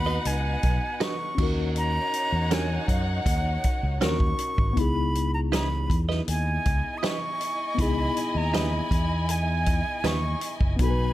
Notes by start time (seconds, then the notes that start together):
Already playing: D#2 B3 D#4 F#4 B4 F#5 B5
0.06 F#4 B4 D#5
0.25 C#2 G#5, closed hi-hat
0.63 B1, kick, closed hi-hat
1.00 F#4 B4 D#5 C#6, snare, closed hi-hat
1.35 D#2 C#4 D#4, kick, crash
1.39 D#4 F#4 A#4 C#5 F#5
1.76 A#5, closed hi-hat
2.14 closed hi-hat
2.33 E2
2.51 C#4 F#4 A#4 G#5, snare, closed hi-hat
2.88 F#2 F#5, kick, closed hi-hat
3.26 D#2, kick, closed hi-hat
3.64 kick, closed hi-hat
3.83 C#2
4.00 D#2 C#4 D#4 F#4 A#4 C#6, snare, closed hi-hat
4.20 kick
4.39 closed hi-hat
4.58 G#1, kick
4.73 C#2 B3 D#4, kick, closed hi-hat
4.78 E4 G#4 B5
5.15 closed hi-hat
5.34 A#5
5.52 E4 B4 D#5 B5, snare, closed hi-hat
5.90 E2, kick, closed hi-hat
6.09 E4 B4 D#5, snare
6.28 D#2 E4 D#5 G#5, closed hi-hat
6.66 C#2, kick, closed hi-hat
6.98 D#6
7.03 E4 B4 D#5 C#6, snare, closed hi-hat
7.41 closed hi-hat
7.75 C#2 B3 D#4, kick, closed hi-hat
7.80 E4 G#4 B5
8.17 closed hi-hat
8.35 D#2 A#5
8.54 E4 B4 D#5 B5, snare, closed hi-hat
8.91 E2, kick, closed hi-hat
9.29 G#5, closed hi-hat
9.66 kick, closed hi-hat
10.04 D#2 E4 B4 D#5 C#6, snare, closed hi-hat
10.41 closed hi-hat
10.61 F#1, kick
10.76 B1 B3 D#4 B4 G#5, kick, closed hi-hat
10.81 F#4 A4 B5
10.90 B4